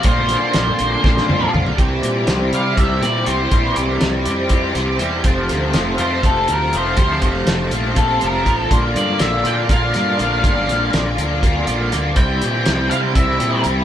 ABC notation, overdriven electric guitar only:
X:1
M:7/8
L:1/8
Q:1/4=121
K:Cmix
V:1 name="Overdriven electric guitar"
[B,,D,B,DF]4- [B,,D,B,DF] [B,,D,B,DF] [B,,D,B,DF] | [C,E,G,CG]3 [G,CG] [C,E,G,CG] [G,CG] [E,G,CG] | [C,E,G,CG]3 [G,CG] [C,E,G,CG] [G,CG] [E,G,CG] | [F,,C,F,A,CF]3 [F,A,CF] [F,,C,F,A,CF] [F,A,CF] [F,A,CF] |
[F,,C,F,A,CF]3 [F,A,CF] [F,,C,F,A,CF] [F,A,CF] [F,A,CF] | [B,,D,B,DF]3 [B,DF] [B,,D,B,DF] [B,DF] [D,B,DF] | [B,,D,B,DF]3 [B,DF] [B,,D,B,DF] [B,DF] [D,B,DF] | [C,E,G,CE]3 [G,CE] [C,E,G,CE] [G,CE] [E,G,CE] |]